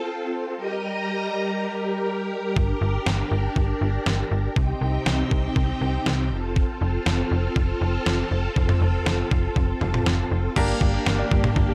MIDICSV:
0, 0, Header, 1, 6, 480
1, 0, Start_track
1, 0, Key_signature, -2, "minor"
1, 0, Tempo, 500000
1, 541, Time_signature, 4, 2, 24, 8
1, 11270, End_track
2, 0, Start_track
2, 0, Title_t, "String machine"
2, 0, Program_c, 0, 50
2, 0, Note_on_c, 0, 60, 72
2, 0, Note_on_c, 0, 65, 75
2, 0, Note_on_c, 0, 69, 87
2, 503, Note_off_c, 0, 60, 0
2, 520, Note_off_c, 0, 65, 0
2, 520, Note_off_c, 0, 69, 0
2, 542, Note_on_c, 0, 55, 82
2, 542, Note_on_c, 0, 67, 71
2, 542, Note_on_c, 0, 75, 74
2, 542, Note_on_c, 0, 82, 87
2, 543, Note_on_c, 0, 70, 72
2, 2442, Note_off_c, 0, 55, 0
2, 2442, Note_off_c, 0, 75, 0
2, 2443, Note_off_c, 0, 82, 0
2, 2460, Note_on_c, 0, 62, 84
2, 4343, Note_off_c, 0, 67, 0
2, 4344, Note_off_c, 0, 70, 0
2, 4362, Note_off_c, 0, 62, 0
2, 4379, Note_on_c, 0, 48, 81
2, 4380, Note_on_c, 0, 60, 76
2, 4380, Note_on_c, 0, 63, 76
2, 4380, Note_on_c, 0, 67, 73
2, 4380, Note_on_c, 0, 79, 86
2, 6043, Note_off_c, 0, 48, 0
2, 6044, Note_off_c, 0, 60, 0
2, 6044, Note_off_c, 0, 63, 0
2, 6044, Note_off_c, 0, 67, 0
2, 6044, Note_off_c, 0, 79, 0
2, 6059, Note_on_c, 0, 60, 82
2, 6060, Note_on_c, 0, 65, 77
2, 6060, Note_on_c, 0, 69, 87
2, 10102, Note_off_c, 0, 60, 0
2, 10102, Note_off_c, 0, 65, 0
2, 10102, Note_off_c, 0, 69, 0
2, 10140, Note_on_c, 0, 58, 83
2, 10140, Note_on_c, 0, 62, 75
2, 10141, Note_on_c, 0, 67, 88
2, 11270, Note_off_c, 0, 58, 0
2, 11270, Note_off_c, 0, 62, 0
2, 11270, Note_off_c, 0, 67, 0
2, 11270, End_track
3, 0, Start_track
3, 0, Title_t, "Grand piano"
3, 0, Program_c, 1, 0
3, 10140, Note_on_c, 1, 62, 66
3, 10141, Note_on_c, 1, 58, 74
3, 10141, Note_on_c, 1, 67, 67
3, 10141, Note_on_c, 1, 70, 77
3, 11270, Note_off_c, 1, 58, 0
3, 11270, Note_off_c, 1, 62, 0
3, 11270, Note_off_c, 1, 67, 0
3, 11270, Note_off_c, 1, 70, 0
3, 11270, End_track
4, 0, Start_track
4, 0, Title_t, "Synth pluck"
4, 0, Program_c, 2, 84
4, 10141, Note_on_c, 2, 55, 91
4, 10251, Note_off_c, 2, 55, 0
4, 10262, Note_on_c, 2, 58, 79
4, 10372, Note_off_c, 2, 58, 0
4, 10381, Note_on_c, 2, 62, 84
4, 10492, Note_off_c, 2, 62, 0
4, 10501, Note_on_c, 2, 67, 80
4, 10611, Note_off_c, 2, 67, 0
4, 10621, Note_on_c, 2, 70, 97
4, 10731, Note_off_c, 2, 70, 0
4, 10741, Note_on_c, 2, 74, 82
4, 10852, Note_off_c, 2, 74, 0
4, 10861, Note_on_c, 2, 55, 79
4, 10971, Note_off_c, 2, 55, 0
4, 10981, Note_on_c, 2, 58, 72
4, 11092, Note_off_c, 2, 58, 0
4, 11101, Note_on_c, 2, 62, 91
4, 11212, Note_off_c, 2, 62, 0
4, 11221, Note_on_c, 2, 67, 74
4, 11270, Note_off_c, 2, 67, 0
4, 11270, End_track
5, 0, Start_track
5, 0, Title_t, "FM bass"
5, 0, Program_c, 3, 39
5, 2462, Note_on_c, 3, 31, 101
5, 2630, Note_off_c, 3, 31, 0
5, 2701, Note_on_c, 3, 31, 98
5, 2869, Note_off_c, 3, 31, 0
5, 2942, Note_on_c, 3, 31, 97
5, 3110, Note_off_c, 3, 31, 0
5, 3181, Note_on_c, 3, 31, 99
5, 3349, Note_off_c, 3, 31, 0
5, 3420, Note_on_c, 3, 31, 98
5, 3588, Note_off_c, 3, 31, 0
5, 3661, Note_on_c, 3, 31, 99
5, 3829, Note_off_c, 3, 31, 0
5, 3901, Note_on_c, 3, 31, 99
5, 4069, Note_off_c, 3, 31, 0
5, 4141, Note_on_c, 3, 31, 97
5, 4309, Note_off_c, 3, 31, 0
5, 4381, Note_on_c, 3, 36, 105
5, 4549, Note_off_c, 3, 36, 0
5, 4620, Note_on_c, 3, 36, 92
5, 4789, Note_off_c, 3, 36, 0
5, 4860, Note_on_c, 3, 36, 96
5, 5029, Note_off_c, 3, 36, 0
5, 5101, Note_on_c, 3, 36, 103
5, 5269, Note_off_c, 3, 36, 0
5, 5338, Note_on_c, 3, 36, 102
5, 5507, Note_off_c, 3, 36, 0
5, 5580, Note_on_c, 3, 36, 98
5, 5748, Note_off_c, 3, 36, 0
5, 5820, Note_on_c, 3, 36, 108
5, 6060, Note_on_c, 3, 29, 92
5, 6074, Note_off_c, 3, 36, 0
5, 6396, Note_off_c, 3, 29, 0
5, 6541, Note_on_c, 3, 29, 94
5, 6709, Note_off_c, 3, 29, 0
5, 6780, Note_on_c, 3, 29, 98
5, 6948, Note_off_c, 3, 29, 0
5, 7020, Note_on_c, 3, 29, 105
5, 7188, Note_off_c, 3, 29, 0
5, 7258, Note_on_c, 3, 29, 96
5, 7427, Note_off_c, 3, 29, 0
5, 7500, Note_on_c, 3, 29, 95
5, 7668, Note_off_c, 3, 29, 0
5, 7740, Note_on_c, 3, 29, 93
5, 7909, Note_off_c, 3, 29, 0
5, 7980, Note_on_c, 3, 29, 93
5, 8148, Note_off_c, 3, 29, 0
5, 8221, Note_on_c, 3, 29, 104
5, 8389, Note_off_c, 3, 29, 0
5, 8460, Note_on_c, 3, 29, 91
5, 8629, Note_off_c, 3, 29, 0
5, 8701, Note_on_c, 3, 29, 105
5, 8869, Note_off_c, 3, 29, 0
5, 8941, Note_on_c, 3, 29, 99
5, 9109, Note_off_c, 3, 29, 0
5, 9179, Note_on_c, 3, 29, 101
5, 9348, Note_off_c, 3, 29, 0
5, 9422, Note_on_c, 3, 29, 99
5, 9589, Note_off_c, 3, 29, 0
5, 9661, Note_on_c, 3, 29, 97
5, 9829, Note_off_c, 3, 29, 0
5, 9902, Note_on_c, 3, 29, 102
5, 10069, Note_off_c, 3, 29, 0
5, 10141, Note_on_c, 3, 31, 106
5, 10309, Note_off_c, 3, 31, 0
5, 10378, Note_on_c, 3, 31, 103
5, 10547, Note_off_c, 3, 31, 0
5, 10621, Note_on_c, 3, 31, 97
5, 10789, Note_off_c, 3, 31, 0
5, 10861, Note_on_c, 3, 31, 104
5, 11029, Note_off_c, 3, 31, 0
5, 11099, Note_on_c, 3, 31, 102
5, 11268, Note_off_c, 3, 31, 0
5, 11270, End_track
6, 0, Start_track
6, 0, Title_t, "Drums"
6, 2462, Note_on_c, 9, 36, 101
6, 2558, Note_off_c, 9, 36, 0
6, 2942, Note_on_c, 9, 38, 114
6, 3038, Note_off_c, 9, 38, 0
6, 3420, Note_on_c, 9, 36, 92
6, 3516, Note_off_c, 9, 36, 0
6, 3901, Note_on_c, 9, 38, 102
6, 3997, Note_off_c, 9, 38, 0
6, 4381, Note_on_c, 9, 36, 97
6, 4477, Note_off_c, 9, 36, 0
6, 4860, Note_on_c, 9, 38, 117
6, 4956, Note_off_c, 9, 38, 0
6, 5101, Note_on_c, 9, 36, 98
6, 5197, Note_off_c, 9, 36, 0
6, 5338, Note_on_c, 9, 36, 94
6, 5434, Note_off_c, 9, 36, 0
6, 5820, Note_on_c, 9, 38, 100
6, 5916, Note_off_c, 9, 38, 0
6, 6300, Note_on_c, 9, 36, 103
6, 6396, Note_off_c, 9, 36, 0
6, 6780, Note_on_c, 9, 38, 116
6, 6876, Note_off_c, 9, 38, 0
6, 7258, Note_on_c, 9, 36, 89
6, 7354, Note_off_c, 9, 36, 0
6, 7741, Note_on_c, 9, 38, 102
6, 7837, Note_off_c, 9, 38, 0
6, 8221, Note_on_c, 9, 36, 102
6, 8317, Note_off_c, 9, 36, 0
6, 8342, Note_on_c, 9, 45, 93
6, 8438, Note_off_c, 9, 45, 0
6, 8701, Note_on_c, 9, 38, 111
6, 8797, Note_off_c, 9, 38, 0
6, 8941, Note_on_c, 9, 36, 93
6, 9037, Note_off_c, 9, 36, 0
6, 9179, Note_on_c, 9, 36, 91
6, 9275, Note_off_c, 9, 36, 0
6, 9420, Note_on_c, 9, 45, 84
6, 9516, Note_off_c, 9, 45, 0
6, 9543, Note_on_c, 9, 47, 84
6, 9639, Note_off_c, 9, 47, 0
6, 9661, Note_on_c, 9, 38, 103
6, 9757, Note_off_c, 9, 38, 0
6, 10141, Note_on_c, 9, 36, 102
6, 10141, Note_on_c, 9, 49, 88
6, 10237, Note_off_c, 9, 36, 0
6, 10237, Note_off_c, 9, 49, 0
6, 10378, Note_on_c, 9, 36, 98
6, 10474, Note_off_c, 9, 36, 0
6, 10621, Note_on_c, 9, 38, 114
6, 10717, Note_off_c, 9, 38, 0
6, 10862, Note_on_c, 9, 36, 96
6, 10958, Note_off_c, 9, 36, 0
6, 10982, Note_on_c, 9, 47, 97
6, 11078, Note_off_c, 9, 47, 0
6, 11099, Note_on_c, 9, 36, 92
6, 11195, Note_off_c, 9, 36, 0
6, 11270, End_track
0, 0, End_of_file